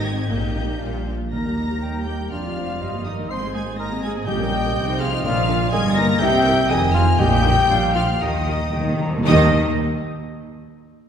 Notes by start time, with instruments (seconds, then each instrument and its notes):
Already playing: double bass section G#1, cello section G#2, viola section C4 D#4, violin section G4 D#5
0.04 french horn section G3 C4, violin section G#6
0.30 double bass section A#1, timpani A#2, cello section A#2, viola section A#3 D#4, violin section G4 D#5 G6
0.56 french horn section G3 D#4
0.80 double bass section A#1, cello section A#2, french horn section G3, viola section A#3 D4, violin section F4 F5
1.07 french horn section F3
1.32 cello section D#2, double bass section D#2, timpani D#3, viola section A#3 D#4, french horn section A#3, cor anglais A#4, violin section A#5 A#6, flute section A#5
1.45 viola section G3 G4
1.57 viola section A#3 D#4
1.69 viola section G3 G4
1.82 viola section A#3 D#4, clarinet G5
1.94 viola section G3 G4
2.06 french horn section G3, viola section A#3 D#4, cor anglais G4, flute section G5, violin section G5 G6
2.19 viola section G3 G4
2.31 double bass section F1, cello section F2, viola section F3 D4, french horn section F3, cor anglais F4, clarinet D5, flute section F5, violin section F5 F6
2.45 viola section G#3 F4
2.56 viola section F3 D4
2.69 viola section G#3 F4
2.81 double bass section G1, cello section G2, viola section G3 D#4, clarinet D#5
2.94 viola section A#3 G4
3.05 french horn section D#3, viola section G3 D#4, cor anglais D#4, flute section D#5, violin section D#5 D#6
3.19 viola section A#3 G4
3.30 double bass section G#1, cello section G#2, viola section G#3 D#4, french horn section C4, clarinet C5, cor anglais C5, flute section C6, violin section C6 C7
3.43 viola section C4 G#4
3.54 french horn section G#3, viola section G#3 D#4, cor anglais G#4, violin section G#5 G#6, flute section G#5
3.67 viola section C4 G#4
3.78 viola section G#3 D#4, french horn section A#3, cor anglais A#4, clarinet D#5, flute section A#5, violin section A#5 A#6
3.90 viola section C4 G#4
4.03 french horn section G#3, viola section G#3 D#4, cor anglais G#4, flute section G#5, violin section G#5 G#6
4.15 viola section C4 G#4
4.27 double bass section A#1, timpani A#2, cello section A#2, french horn section G3, viola section A#3 G4, cor anglais G4, clarinet D#5, flute section G5, violin section G5 G6
4.39 viola section C#4 A#4
4.52 viola section A#3 G4
4.63 viola section C#4 A#4
4.75 double bass section C2, cello section C3, viola section C4 G#4
4.87 viola section D#4 C5
5.00 french horn section F3, viola section C4 G#4, cor anglais F4, flute section F5, violin section F5 F6
5.12 viola section D#4 C5
5.24 double bass section A#1, timpani A#2, cello section A#2, french horn section F3, viola section D4 A#4, cor anglais F4, clarinet D5, violin section F5 F6, flute section F5
5.48 viola section D4 A#4
5.72 double bass section G1, cello section G2, french horn section G#3, viola section D#4 A#4, cor anglais G#4, clarinet D#5, violin section G#5 G#6, flute section G#5
5.96 french horn section A#3, viola section D#4 A#4, cor anglais A#4, violin section A#5 A#6, flute section A#5
6.20 double bass section C2, cello section C3, french horn section G3, viola section E4 A#4, cor anglais G4, clarinet E5, flute section G5, violin section G5 G6
6.46 viola section E4 A#4
6.69 double bass section F1, cello section F2, french horn section D#3, cor anglais D#4, viola section D#4 G#4, violin section D#5 D#6, flute section D#5, clarinet G#5
6.94 french horn section F3, viola section D#4 G#4, cor anglais F4, violin section F5 F6, flute section F5
7.19 double bass section A#1, timpani A#2, cello section A#2, french horn section G3, viola section D#4 G4, cor anglais G4, clarinet D#5, violin section G5 G6, flute section G5
7.44 viola section D#4 G4
7.69 double bass section A#1, cello section A#2, viola section D4 F4, clarinet F5
7.95 french horn section F3, viola section D4 F4, cor anglais F4, violin section F5 F6, flute section F5
8.21 double bass section D#2, french horn section D#3, timpani D#3, cello section D#3, viola section D#4 G4, cor anglais D#4, violin section D#5 D#6, flute section D#5, clarinet G5
8.30 timpani D#3
8.38 timpani D#3
8.46 timpani D#3, viola section D#4 G4
8.54 timpani D#3
8.62 timpani D#3
8.70 timpani D#3, viola section D#4 G4
8.74 double bass section D#2, cello section D#3, timpani D#3, clarinet G5
8.86 timpani D#3
8.94 timpani D#3
9.01 timpani D#3, viola section D#4 G4, clarinet A#5
9.10 timpani D#3
9.18 timpani D#3
9.27 double bass section D#2, timpani D#3, cello section D#3, viola section D#4 G4, french horn section D#4, cor anglais D#4, violin section D#5 D#6, flute section D#5